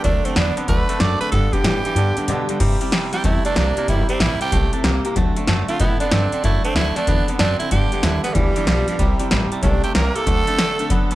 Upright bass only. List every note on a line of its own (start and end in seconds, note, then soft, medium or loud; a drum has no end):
0.04 0.24 D2 medium
0.36 0.56 E2 loud
0.57 muted upright bass stroke medium
0.68 0.88 D2 medium
1.00 1.21 F#2 loud
1.21 muted upright bass stroke medium
1.32 1.52 G2 medium
1.53 muted upright bass stroke medium
1.64 1.84 A2 medium
1.84 muted upright bass stroke medium
1.95 2.16 G2 medium
2.17 muted upright bass stroke medium
2.28 2.48 B2 medium
2.48 muted upright bass stroke medium
2.60 2.80 G2 medium
2.81 muted upright bass stroke medium
2.92 3.11 F#2 loud
3.13 muted upright bass stroke soft
3.24 3.44 E2 medium
3.45 muted upright bass stroke medium
3.56 3.76 C2 loud
3.77 muted upright bass stroke medium
3.88 4.08 G1 medium
4.08 muted upright bass stroke medium
4.20 4.40 A1 medium
4.40 muted upright bass stroke medium
4.52 4.71 B1 medium
4.84 5.04 C2 loud
5.16 5.36 D2 medium
5.48 5.68 F#2 loud
5.69 muted upright bass stroke medium
5.80 6.00 A2 medium
6.00 muted upright bass stroke medium
6.12 6.31 G2 loud
6.32 muted upright bass stroke medium
6.44 6.63 F#2 medium
6.75 6.95 D2 loud
6.96 muted upright bass stroke medium
7.07 7.27 E2 medium
7.28 muted upright bass stroke medium
7.40 7.60 F#2 loud
7.60 muted upright bass stroke medium
7.71 7.91 G2 medium
7.92 muted upright bass stroke medium
8.03 8.23 D#2 loud
8.35 8.55 D2 medium
8.67 8.87 B1 loud
8.99 9.19 C2 medium
9.31 9.51 A1 loud
9.52 muted upright bass stroke medium
9.63 9.83 B1 medium
9.95 10.15 C2 loud
10.26 10.46 D2 medium
10.47 muted upright bass stroke medium
10.58 10.78 E2 medium
10.80 muted upright bass stroke soft
10.90 11.09 F#2 medium
11.11 muted upright bass stroke soft